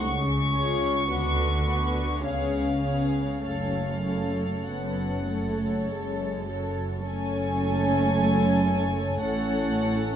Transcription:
0.01 C#2 C#3 C#6
0.52 G#3 F4 G#4 C#5
1.08 D2 D3 B3 F#4 B4
1.64 B3 F#4 B4
2.21 C#2 C#3 B3 C#4 G#4 C#5 F5
2.82 B3 C#4 G#4 C#5
3.43 F#1 F#2 A3 C#4 A4 C#5 F5
4.04 A3 C#4 A4 C#5
4.64 F#1 F#2 B3 F#5
5.27 A3 A4 C#5
5.87 F#1 F#2 G#3
6.46 F#3 A4 C#5
7.05 F#1 F#2 A3 C#4 A4 C#5 G#5
9.22 A1 A2 A3 C#4 A4 C#5 F#5

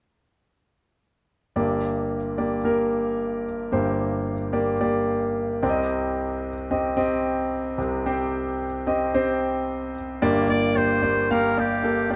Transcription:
1.56 G1 G2 A#3 G4 D5
2.38 A#3 G4 D5
2.65 A#3 G4 A#4
3.72 G1 G2 A#3 G4 C5
4.53 A#3 G4 D5
4.81 A#3 G4 D5
5.63 C2 C3 C4 G4 D5
5.69 D#5
6.71 C4 G4 D#5
6.97 C4 G4 D#5
7.78 C2 C3
8.06 C4 G4 C5
8.87 C4 G4 D#5
9.14 C4 G4 C5
10.22 G1 G2 A#3 G4 D5
10.49 A#3 G4 D5
10.75 A#3 G4 C5 D5
11.02 A#3 G4 D5
11.31 A#3 G4 A#4 F5
11.57 A#3 G4 D5
11.83 A#3 G4 A4
12.10 A#3 G4 D5

